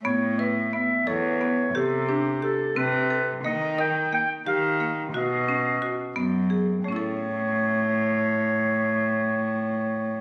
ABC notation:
X:1
M:5/8
L:1/16
Q:1/4=88
K:Alyd
V:1 name="Clarinet"
c2 e2 e2 c4 | A2 =G2 A2 B3 z | d2 =g2 g2 =f2 z2 | d6 z4 |
c8- c2- | c8- c2 |]
V:2 name="Marimba"
B,2 B2 B,2 A2 B,2 | =G2 =D2 G2 =C2 A2 | ^A,2 ^A2 A,2 =G2 A,2 | F2 C2 F2 B,2 G2 |
[A,CEA]8- [A,CEA]2- | [A,CEA]8- [A,CEA]2 |]
V:3 name="Cello" clef=bass
A,,6 E,,4 | =C,6 C,4 | D,6 D,4 | B,,6 F,,4 |
A,,8- A,,2- | A,,8- A,,2 |]